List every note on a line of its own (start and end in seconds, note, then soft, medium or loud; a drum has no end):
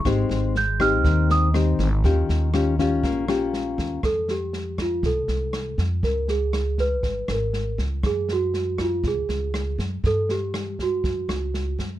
0.05 0.28 G#1 loud
0.05 1.02 G#3 medium
0.05 0.55 C4 medium
0.05 0.55 D#4 medium
0.05 0.55 G4 medium
0.05 kick medium
0.05 cross-stick medium
0.05 snare soft
0.29 1.04 G#1 medium
0.29 snare soft
0.55 0.80 G6 medium
0.55 snare soft
0.80 1.50 C4 medium
0.80 1.51 D#4 medium
0.80 1.51 G4 medium
0.80 1.27 F6 medium
0.80 kick soft
0.80 cross-stick medium
0.80 snare soft
1.04 1.75 D#2 medium
1.04 2.02 D#3 medium
1.04 kick medium
1.04 snare soft
1.30 1.46 D#6 medium
1.30 snare soft
1.54 1.88 C4 medium
1.54 1.88 D#4 medium
1.54 1.88 G4 medium
1.54 cross-stick medium
1.54 snare soft
1.79 2.02 G#1 loud
1.79 kick soft
1.79 snare soft
2.04 2.27 D#2 loud
2.04 3.02 D#3 medium
2.04 2.50 C#4 medium
2.04 2.50 F4 medium
2.04 2.51 G4 medium
2.04 kick medium
2.04 snare soft
2.29 3.03 D#2 medium
2.29 snare soft
2.54 2.75 C#4 medium
2.54 2.75 F4 medium
2.54 2.75 G4 medium
2.54 cross-stick medium
2.54 snare soft
2.79 3.25 C#4 medium
2.79 3.25 F4 medium
2.79 3.26 G4 medium
2.79 kick soft
2.79 snare soft
3.03 3.75 A#1 loud
3.03 4.01 A#3 medium
3.03 kick medium
3.03 snare soft
3.28 4.00 C#4 medium
3.28 4.00 F4 medium
3.28 4.00 G4 medium
3.28 cross-stick medium
3.28 snare soft
3.54 snare soft
3.78 4.02 D#2 medium
3.78 kick soft
3.78 snare soft
4.03 5.05 F2 medium
4.03 4.30 A4 medium
4.03 kick medium
4.03 cross-stick soft
4.03 snare soft
4.28 4.76 G4 medium
4.28 snare soft
4.53 snare soft
4.78 5.06 F4 medium
4.78 kick soft
4.78 cross-stick medium
4.78 snare soft
5.03 5.27 C2 medium
5.03 5.76 A4 medium
5.03 kick medium
5.03 snare soft
5.28 5.75 C2 medium
5.28 snare soft
5.53 cross-stick medium
5.53 snare soft
5.78 6.01 F2 medium
5.78 kick soft
5.78 snare soft
6.03 7.03 C#2 medium
6.03 6.27 A#4 medium
6.03 kick medium
6.03 snare soft
6.28 6.81 G#4 medium
6.28 snare soft
6.53 cross-stick medium
6.53 snare soft
6.78 7.31 B4 medium
6.78 kick soft
6.78 snare soft
7.03 7.27 G#1 medium
7.03 kick medium
7.03 snare soft
7.28 7.75 G#1 medium
7.28 7.77 A#4 medium
7.28 cross-stick medium
7.28 snare soft
7.53 snare soft
7.78 8.02 C#2 medium
7.78 kick soft
7.78 snare soft
8.03 9.05 F#2 medium
8.03 8.31 G#4 loud
8.03 kick medium
8.03 cross-stick medium
8.03 snare soft
8.29 snare soft
8.33 8.82 F#4 medium
8.54 snare soft
8.78 9.06 F4 medium
8.78 kick soft
8.78 cross-stick medium
8.78 snare soft
9.04 9.27 C#2 medium
9.04 kick medium
9.04 snare soft
9.08 9.77 G#4 medium
9.29 9.75 C#2 medium
9.29 snare soft
9.54 cross-stick medium
9.54 snare soft
9.78 10.02 F#2 medium
9.78 kick soft
9.78 snare soft
10.04 11.04 G2 medium
10.04 10.31 A4 loud
10.04 kick medium
10.04 snare soft
10.29 10.81 G4 medium
10.29 snare soft
10.54 cross-stick medium
10.54 snare soft
10.79 11.77 F#4 medium
10.79 kick soft
10.79 snare soft
11.04 11.27 F#2 medium
11.04 kick medium
11.04 snare soft
11.29 11.75 C#2 medium
11.29 cross-stick medium
11.29 snare soft
11.54 snare soft
11.79 11.99 F#2 medium
11.79 kick soft
11.79 snare soft